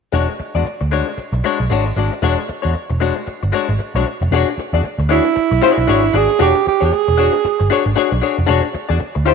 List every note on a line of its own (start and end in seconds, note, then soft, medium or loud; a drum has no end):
0.12 0.25 E1 loud
0.12 0.32 G#3 medium
0.12 0.29 D4 medium
0.12 0.28 F#4 medium
0.12 0.27 C#5 medium
0.28 muted hollow-body jazz guitar stroke soft
0.39 muted hollow-body jazz guitar stroke soft
0.39 muted picked electric bass stroke soft
0.55 0.63 E2 medium
0.55 0.65 G#3 soft
0.55 0.65 D4 soft
0.55 0.65 F#4 medium
0.55 0.66 D5 medium
0.65 muted picked electric bass stroke soft
0.65 muted hollow-body jazz guitar stroke soft
0.81 1.01 D2 medium
0.81 muted hollow-body jazz guitar stroke soft
0.91 1.11 G#3 medium
0.91 1.07 D4 medium
0.91 1.07 F#4 medium
0.91 1.06 C#5 medium
1.07 muted hollow-body jazz guitar stroke soft
1.18 muted hollow-body jazz guitar stroke soft
1.18 muted picked electric bass stroke soft
1.32 1.41 B1 medium
1.32 muted hollow-body jazz guitar stroke soft
1.44 1.64 G#3 medium
1.44 1.60 D4 medium
1.44 1.59 F#4 medium
1.44 1.58 C#5 medium
1.60 1.68 B1 medium
1.60 muted hollow-body jazz guitar stroke soft
1.70 1.90 G#1 medium
1.70 1.90 G#3 medium
1.70 1.86 D4 medium
1.70 1.85 F#4 medium
1.70 1.85 C#5 medium
1.86 muted hollow-body jazz guitar stroke soft
1.96 2.08 G#1 medium
1.96 2.13 G#3 medium
1.96 2.12 D4 medium
1.96 2.12 F#4 medium
1.96 2.12 D5 medium
2.12 muted hollow-body jazz guitar stroke soft
2.22 2.34 E1 loud
2.22 2.42 G#3 medium
2.22 2.38 D4 medium
2.22 2.38 F#4 medium
2.22 2.37 C#5 loud
2.38 muted hollow-body jazz guitar stroke soft
2.48 muted hollow-body jazz guitar stroke soft
2.48 muted picked electric bass stroke soft
2.62 2.73 E2 medium
2.62 2.72 G#3 soft
2.62 2.72 D4 soft
2.62 2.73 F#4 medium
2.62 2.74 C#5 medium
2.73 muted hollow-body jazz guitar stroke soft
2.73 muted picked electric bass stroke soft
2.90 3.10 E1 medium
2.90 muted hollow-body jazz guitar stroke soft
3.00 3.20 G#3 medium
3.00 3.16 D4 medium
3.00 3.15 F#4 medium
3.00 3.15 C#5 medium
3.16 muted hollow-body jazz guitar stroke soft
3.26 muted hollow-body jazz guitar stroke soft
3.26 muted picked electric bass stroke soft
3.43 3.51 G1 medium
3.43 muted hollow-body jazz guitar stroke soft
3.52 3.72 G#3 medium
3.52 3.69 D4 medium
3.52 3.68 F#4 medium
3.52 3.68 C#5 medium
3.69 3.77 G#1 medium
3.69 muted hollow-body jazz guitar stroke soft
3.79 muted hollow-body jazz guitar stroke soft
3.79 muted picked electric bass stroke soft
3.95 4.03 B1 loud
3.95 4.05 G#3 medium
3.95 4.06 D4 medium
3.95 4.06 F#4 medium
3.95 4.07 C#5 medium
4.06 muted hollow-body jazz guitar stroke soft
4.21 4.29 F1 medium
4.21 muted hollow-body jazz guitar stroke soft
4.31 4.43 E1 loud
4.31 4.51 D4 medium
4.31 4.49 F#4 loud
4.31 4.48 G#4 loud
4.31 4.47 C#5 medium
4.49 muted hollow-body jazz guitar stroke soft
4.58 muted picked electric bass stroke soft
4.58 muted hollow-body jazz guitar stroke soft
4.73 4.81 E2 medium
4.73 4.83 D4 soft
4.73 4.83 F#4 soft
4.73 4.84 G#4 medium
4.73 4.85 D5 medium
4.84 muted hollow-body jazz guitar stroke soft
4.84 muted picked electric bass stroke medium
4.99 5.18 D2 medium
4.99 muted hollow-body jazz guitar stroke soft
5.09 5.29 D4 medium
5.09 6.18 E4 medium
5.09 5.25 F#4 medium
5.09 5.24 G#4 medium
5.09 5.24 C#5 medium
5.25 muted hollow-body jazz guitar stroke soft
5.35 muted hollow-body jazz guitar stroke soft
5.35 muted picked electric bass stroke soft
5.51 5.59 B1 medium
5.51 muted hollow-body jazz guitar stroke soft
5.62 5.83 D4 medium
5.62 5.77 F#4 medium
5.62 5.77 G#4 medium
5.62 5.76 C#5 loud
5.77 5.85 B1 medium
5.77 muted hollow-body jazz guitar stroke medium
5.87 6.08 G#1 medium
5.87 6.07 D4 medium
5.87 6.04 F#4 medium
5.87 6.03 G#4 medium
5.87 6.03 C#5 loud
6.04 muted hollow-body jazz guitar stroke soft
6.13 6.26 G#1 medium
6.13 6.30 D4 medium
6.13 6.30 F#4 medium
6.13 6.29 G#4 medium
6.13 6.41 G#4 loud
6.13 6.29 D5 medium
6.30 muted hollow-body jazz guitar stroke soft
6.39 6.52 E1 loud
6.39 6.59 D4 medium
6.39 6.55 F#4 loud
6.39 6.65 G4 loud
6.39 6.54 G#4 loud
6.39 6.54 C#5 loud
6.55 muted hollow-body jazz guitar stroke soft
6.65 6.81 G4 loud
6.65 muted hollow-body jazz guitar stroke soft
6.65 muted picked electric bass stroke medium
6.80 6.90 E2 medium
6.80 6.91 D4 soft
6.80 6.91 F#4 soft
6.80 6.92 G#4 medium
6.80 6.92 C#5 medium
6.85 7.83 G#4 loud
6.92 muted hollow-body jazz guitar stroke soft
6.92 muted picked electric bass stroke soft
7.08 7.28 E1 medium
7.08 muted hollow-body jazz guitar stroke soft
7.17 7.37 D4 medium
7.17 7.34 F#4 medium
7.17 7.33 G#4 medium
7.17 7.32 C#5 medium
7.33 muted hollow-body jazz guitar stroke medium
7.44 muted hollow-body jazz guitar stroke medium
7.44 muted picked electric bass stroke soft
7.60 7.68 G1 medium
7.60 muted hollow-body jazz guitar stroke soft
7.70 7.89 D4 medium
7.70 7.86 F#4 medium
7.70 7.85 G#4 medium
7.70 7.84 C#5 loud
7.85 7.94 G#1 medium
7.85 muted hollow-body jazz guitar stroke soft
7.95 8.15 D4 medium
7.95 8.11 F#4 loud
7.95 8.11 G#4 medium
7.95 8.10 C#5 loud
8.11 8.20 B1 medium
8.11 muted hollow-body jazz guitar stroke medium
8.21 8.38 D4 medium
8.21 8.38 F#4 medium
8.21 8.37 G#4 medium
8.21 8.36 C#5 medium
8.37 8.46 F1 loud
8.37 muted hollow-body jazz guitar stroke soft
8.46 8.60 E1 loud
8.46 8.66 D4 medium
8.46 8.63 F#4 loud
8.46 8.62 G#4 loud
8.46 8.62 C#5 loud
8.63 muted hollow-body jazz guitar stroke soft
8.73 muted hollow-body jazz guitar stroke soft
8.73 muted picked electric bass stroke soft
8.89 8.98 E2 loud
8.89 8.98 D4 soft
8.89 8.98 F#4 medium
8.89 8.99 G#4 medium
8.89 9.00 D5 medium
8.99 muted hollow-body jazz guitar stroke soft
8.99 muted picked electric bass stroke medium
9.15 9.34 D2 medium
9.15 muted hollow-body jazz guitar stroke soft
9.25 9.34 D4 medium
9.25 9.34 E4 medium
9.25 9.34 F#4 medium
9.25 9.34 G#4 medium
9.25 9.34 C#5 medium